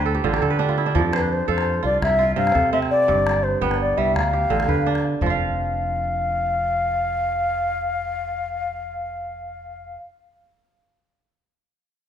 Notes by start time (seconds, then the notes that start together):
Already playing: D2 B4 C5 D5 E5
0.06 A4
0.15 G4
0.24 A1 D3 F4
0.33 G4, calabash click
0.42 D3 A4, calabash thump
0.50 B4, calabash click
0.59 D4 G4
0.69 F4
0.78 E4
0.86 D4
0.95 F2 F3 D5, calabash thump
1.13 B4 C5, calabash click
1.32 C5
1.48 F2 A4 C5 F5, calabash thump
1.58 calabash click
1.83 C2 F4 D5
2.02 C2 E5, calabash thump, calabash click
2.19 F4
2.36 G2 C3 F5
2.47 calabash click
2.55 C3 A4, calabash thump
2.65 calabash click
2.73 C4 E5
2.82 calabash click
2.91 D5
3.08 G1 G2, calabash thump
3.18 calabash click
3.26 D5, calabash click
3.36 calabash click
3.43 C5
3.61 G1 B3 B4 G5, calabash thump
3.71 calabash click
3.80 D5, calabash click
3.98 C2 G3 E5
4.15 D2 F5, calabash thump, calabash click
4.25 calabash click
4.33 G4
4.50 A1 D3
4.60 calabash click
4.68 D3 B4, calabash thump
4.78 calabash click
4.86 D4, calabash click
4.95 calabash click
5.21 F1 F3 F5, calabash thump
5.26 F4 F5